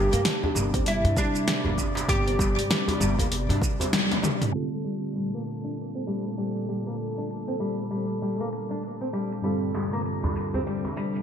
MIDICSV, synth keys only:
0, 0, Header, 1, 2, 480
1, 0, Start_track
1, 0, Key_signature, -2, "minor"
1, 0, Tempo, 612245
1, 1639, Time_signature, 4, 2, 24, 8
1, 8800, End_track
2, 0, Start_track
2, 0, Title_t, "Synth keys"
2, 0, Program_c, 0, 88
2, 3539, Note_on_c, 0, 50, 62
2, 3548, Note_on_c, 0, 55, 58
2, 3554, Note_on_c, 0, 60, 58
2, 3563, Note_on_c, 0, 65, 62
2, 3569, Note_on_c, 0, 69, 72
2, 3723, Control_c, 0, 64, 127
2, 7366, Note_off_c, 0, 50, 0
2, 7370, Note_off_c, 0, 55, 0
2, 7373, Note_off_c, 0, 60, 0
2, 7378, Note_off_c, 0, 65, 0
2, 7381, Note_off_c, 0, 69, 0
2, 7381, Note_on_c, 0, 43, 69
2, 7388, Note_on_c, 0, 50, 62
2, 7394, Note_on_c, 0, 55, 63
2, 7400, Note_on_c, 0, 60, 62
2, 7406, Note_on_c, 0, 65, 59
2, 7409, Control_c, 0, 64, 0
2, 7414, Note_on_c, 0, 69, 80
2, 7544, Control_c, 0, 64, 127
2, 8800, Note_off_c, 0, 43, 0
2, 8800, Note_off_c, 0, 50, 0
2, 8800, Note_off_c, 0, 55, 0
2, 8800, Note_off_c, 0, 60, 0
2, 8800, Note_off_c, 0, 65, 0
2, 8800, Note_off_c, 0, 69, 0
2, 8800, End_track
0, 0, End_of_file